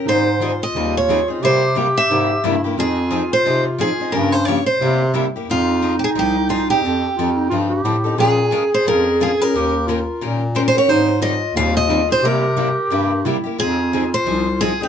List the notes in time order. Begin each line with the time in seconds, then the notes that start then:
0.05 G#2 D#3 G3 C4 D#4 G#4 C5
0.09 D#4
0.41 D#3 G3 C4 D#4 F4 G#4
0.63 D#5
0.73 D#2 D#3 G3 C4 D#4
0.77 G#4
0.97 C#5
1.09 D#3 G3 C4 D#4 G#4
1.28 C4 D#4 G#4
1.41 C3 G3 A#3 E4 G4 C5
1.75 C3 G3 A#3 E4 G4
1.97 E5
2.09 G#2 C3 G3 A#3 E4 G4
2.44 G2 C3 G3 A#3 E4 G4
2.64 A#3 E4 G4
2.77 F2 F3 C4 D#4 F4 G#4
3.11 F3 C4 D#4 G#4
3.33 C5
3.44 C3 F3 C4 D#4 G#4
3.78 F3 C4 D#4 G#4
4.00 C4 D#4 G#4
4.12 G2 C#3 F3 A#3 C#4 G4 A#4
4.16 F4
4.32 C5
4.45 C#3 F3 A#3 F4 G4 C#5
4.66 C5
4.80 C3 G3 A#3 C4 E4 G4
5.14 C3 G3 A#3 E4 G4
5.36 A#3 E4 G4
5.48 F2 F3 C4 D#4 F4 G#4
5.82 F3 C4 D#4 G#4
5.99 G4
6.04 G#4
6.15 C2 F3 C4 D#4 G4 G#4
6.49 F3 C4 D#4 F4 G#4
6.70 C4 D#4 G4 G#4
6.82 F2 F3 C4 D#4 A4
7.16 F2 F3 C4 D#4 F4 A4
7.36 D#4
7.50 G2 F3 C4 D#4 F4 A4
7.69 G4
7.84 A2 F3 C4 D#4 A4
8.04 C4 D#4 A4
8.17 A#2 F3 G#3 C#4 F4 G#4 A#4
8.51 F3 G#3 C#4 F4 A#4
8.74 C5
8.86 F2 F3 G#3 C#4 F4 A#4
9.20 F3 G#3 C#4 F4 G#4 A#4
9.39 C#4 F4 A#4
9.54 D#2 D#3 A#3 C#4 G4 A#4
9.87 D#3 A#3 C#4 F4 G4 A#4
10.21 A#2 D#3 A#3 C#4 G4 A#4
10.55 D#3 A#3 C#4 G4 A#4 C5
10.68 C5
10.75 C#4 G4 A#4 C#5
10.87 G#2 D#3 G3 C4 D#4 G#4 C5
11.20 D#3 G3 C4 D#4 F4 G#4 D#5
11.54 D#2 D#3 G3 C4 D#4 G#4 F5
11.77 D#5
11.90 D#3 G3 C4 D#4 G#4
12.09 C4 D#4 G#4 C5
12.22 C3 G3 A#3 E4 G4 A#4
12.57 C3 G3 A#3 E4 G4
12.90 G2 C3 G3 A#3 E4 G4
13.25 C3 G3 A#3 E4 G4
13.44 A#3 E4 G4
13.58 F2 F3 C4 D#4 F4 G#4
13.93 F3 C4 D#4 G#4
14.14 C5
14.26 C2 F3 C4 D#4 G#4
14.61 F3 C4 D#4 G#4
14.81 C4 D#4 G4 G#4